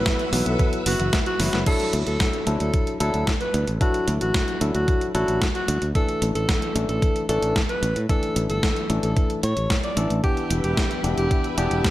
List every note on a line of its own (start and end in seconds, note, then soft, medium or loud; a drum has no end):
0.00 0.29 F#3 medium
0.00 0.30 B3 medium
0.00 0.29 E4 medium
0.00 0.29 B4 medium
0.00 0.36 B4 loud
0.00 1.65 B4 medium
0.00 1.65 E5 medium
0.00 1.63 F#5 medium
0.00 1.65 E6 medium
0.06 0.15 E4 loud
0.06 kick loud
0.06 snare loud
0.06 closed hi-hat medium
0.19 closed hi-hat soft
0.33 0.42 B1 medium
0.33 0.42 E3 medium
0.33 0.83 F#3 medium
0.33 0.83 B3 medium
0.33 0.83 E4 medium
0.33 0.83 B4 medium
0.33 open hi-hat loud
0.46 0.55 B1 medium
0.46 0.55 B3 medium
0.46 0.78 A4 loud
0.46 closed hi-hat soft
0.59 0.72 E3 medium
0.59 kick loud
0.59 closed hi-hat medium
0.73 closed hi-hat soft
0.86 0.96 F#1 loud
0.86 0.92 B3 loud
0.86 1.18 F#4 loud
0.86 open hi-hat loud
1.00 1.09 F#1 medium
1.00 1.05 E3 medium
1.00 closed hi-hat soft
1.13 1.22 E4 loud
1.13 kick loud
1.13 snare loud
1.13 closed hi-hat medium
1.26 1.59 F#4 loud
1.26 closed hi-hat soft
1.40 1.49 F#1 loud
1.40 1.49 E3 medium
1.40 1.63 F#3 medium
1.40 1.63 B3 medium
1.40 1.63 E4 medium
1.40 1.63 B4 loud
1.40 snare medium
1.40 open hi-hat loud
1.53 1.63 F#1 medium
1.53 1.62 B3 medium
1.53 snare medium
1.53 closed hi-hat soft
1.66 2.44 F#3 medium
1.66 2.44 D4 medium
1.66 2.44 E4 medium
1.66 1.99 A4 loud
1.66 2.44 A4 medium
1.66 kick loud
1.66 closed hi-hat medium
1.66 crash medium
1.80 closed hi-hat soft
1.93 2.03 D2 medium
1.93 closed hi-hat medium
2.07 2.16 D2 medium
2.07 2.50 A4 loud
2.07 closed hi-hat soft
2.20 kick loud
2.20 snare loud
2.20 closed hi-hat medium
2.33 closed hi-hat soft
2.47 2.56 D2 medium
2.47 2.97 F#3 medium
2.47 2.97 D4 medium
2.47 2.97 E4 medium
2.47 2.97 A4 medium
2.47 closed hi-hat medium
2.60 2.70 D2 medium
2.60 2.93 A4 medium
2.60 closed hi-hat soft
2.74 kick loud
2.74 closed hi-hat medium
2.87 closed hi-hat soft
3.00 3.10 D2 medium
3.00 3.30 F#3 loud
3.00 3.30 D4 medium
3.00 3.30 E4 medium
3.00 3.30 A4 loud
3.00 3.33 A4 loud
3.00 closed hi-hat medium
3.14 3.23 D2 medium
3.14 closed hi-hat soft
3.27 kick loud
3.27 snare loud
3.27 closed hi-hat medium
3.41 3.73 B4 medium
3.41 closed hi-hat soft
3.54 3.64 D2 medium
3.54 closed hi-hat medium
3.67 3.77 A1 medium
3.67 closed hi-hat soft
3.81 4.58 F#3 medium
3.81 4.58 D4 medium
3.81 4.58 E4 medium
3.81 4.13 F#4 loud
3.81 4.58 A4 medium
3.81 kick loud
3.81 closed hi-hat medium
3.94 closed hi-hat soft
4.08 4.17 D2 medium
4.08 closed hi-hat medium
4.21 4.30 A1 medium
4.21 4.64 F#4 loud
4.21 closed hi-hat soft
4.34 kick loud
4.34 snare loud
4.34 closed hi-hat medium
4.48 closed hi-hat soft
4.61 4.71 D2 medium
4.61 5.12 F#3 medium
4.61 5.12 D4 medium
4.61 5.12 E4 medium
4.61 5.12 A4 medium
4.61 closed hi-hat medium
4.74 4.84 D2 medium
4.74 5.07 F#4 medium
4.74 closed hi-hat soft
4.88 kick loud
4.88 closed hi-hat medium
5.01 closed hi-hat soft
5.15 5.24 A1 medium
5.15 5.44 F#3 loud
5.15 5.44 D4 medium
5.15 5.44 E4 medium
5.15 5.47 F#4 loud
5.15 5.44 A4 loud
5.15 closed hi-hat medium
5.28 5.38 A1 medium
5.28 closed hi-hat soft
5.42 kick loud
5.42 snare loud
5.42 closed hi-hat medium
5.55 5.87 F#4 medium
5.55 closed hi-hat soft
5.68 5.78 D2 medium
5.68 closed hi-hat medium
5.82 5.91 D2 medium
5.82 closed hi-hat soft
5.95 6.72 E3 medium
5.95 6.72 A3 medium
5.95 6.72 D4 medium
5.95 6.27 A4 loud
5.95 6.72 A4 medium
5.95 kick loud
5.95 closed hi-hat medium
6.09 closed hi-hat soft
6.22 6.31 A1 medium
6.22 closed hi-hat medium
6.35 6.45 A1 medium
6.35 6.78 A4 loud
6.35 closed hi-hat soft
6.49 kick loud
6.49 snare loud
6.49 closed hi-hat medium
6.62 closed hi-hat soft
6.75 6.85 A1 medium
6.75 7.26 E3 medium
6.75 7.26 A3 medium
6.75 7.26 D4 medium
6.75 7.26 A4 medium
6.75 closed hi-hat medium
6.89 6.98 A1 medium
6.89 7.21 A4 medium
6.89 closed hi-hat soft
7.02 kick loud
7.02 closed hi-hat medium
7.16 closed hi-hat soft
7.29 7.38 A1 medium
7.29 7.59 E3 medium
7.29 7.59 A3 medium
7.29 7.59 D4 medium
7.29 7.61 A4 loud
7.29 7.59 A4 loud
7.29 closed hi-hat medium
7.42 7.52 A1 medium
7.42 closed hi-hat soft
7.56 kick loud
7.56 snare loud
7.56 closed hi-hat medium
7.69 8.02 B4 loud
7.69 closed hi-hat soft
7.83 7.92 A1 medium
7.83 closed hi-hat medium
7.96 8.05 A2 medium
7.96 closed hi-hat soft
8.09 8.87 E3 medium
8.09 8.87 A3 medium
8.09 8.87 D4 medium
8.09 8.87 A4 medium
8.09 8.42 A4 loud
8.09 kick loud
8.09 closed hi-hat medium
8.23 closed hi-hat soft
8.36 8.46 A1 medium
8.36 closed hi-hat medium
8.50 8.59 G1 medium
8.50 8.93 A4 loud
8.50 closed hi-hat soft
8.63 kick loud
8.63 snare loud
8.63 closed hi-hat medium
8.76 closed hi-hat soft
8.90 8.99 A1 medium
8.90 9.40 E3 medium
8.90 9.40 A3 medium
8.90 9.40 D4 medium
8.90 9.40 A4 medium
8.90 closed hi-hat medium
9.03 9.13 A1 medium
9.03 9.36 A4 medium
9.03 closed hi-hat soft
9.17 kick loud
9.17 closed hi-hat medium
9.30 closed hi-hat soft
9.43 9.53 A2 medium
9.43 9.76 C#5 loud
9.43 closed hi-hat medium
9.57 9.66 A1 medium
9.57 closed hi-hat soft
9.70 kick loud
9.70 snare loud
9.70 closed hi-hat medium
9.84 10.16 D5 medium
9.84 closed hi-hat soft
9.97 10.06 A1 medium
9.97 10.21 E3 medium
9.97 10.21 A3 medium
9.97 10.21 D4 medium
9.97 10.21 A4 loud
9.97 closed hi-hat medium
10.10 10.20 A1 medium
10.10 closed hi-hat soft
10.24 11.01 E3 medium
10.24 11.01 B3 medium
10.24 11.01 D4 medium
10.24 10.56 G4 loud
10.24 11.01 G4 medium
10.24 11.90 B4 medium
10.24 11.90 E5 medium
10.24 11.90 G5 medium
10.24 11.90 B5 medium
10.24 kick loud
10.24 closed hi-hat medium
10.37 closed hi-hat soft
10.50 10.60 E1 medium
10.50 closed hi-hat medium
10.64 10.73 E1 medium
10.64 11.07 G4 loud
10.64 closed hi-hat soft
10.77 kick loud
10.77 snare loud
10.77 closed hi-hat medium
10.91 closed hi-hat soft
11.04 11.13 E1 medium
11.04 11.54 E3 medium
11.04 11.54 B3 medium
11.04 11.54 D4 medium
11.04 11.54 G4 medium
11.04 closed hi-hat medium
11.17 11.27 E1 medium
11.17 11.50 G4 medium
11.17 closed hi-hat soft
11.31 kick loud
11.31 closed hi-hat medium
11.44 closed hi-hat soft
11.58 11.67 E1 medium
11.58 11.87 E3 loud
11.58 11.87 B3 medium
11.58 11.87 D4 medium
11.58 11.87 G4 loud
11.58 11.90 G4 medium
11.58 closed hi-hat medium
11.71 11.80 E1 medium
11.71 closed hi-hat soft
11.84 kick loud
11.84 snare loud
11.84 closed hi-hat medium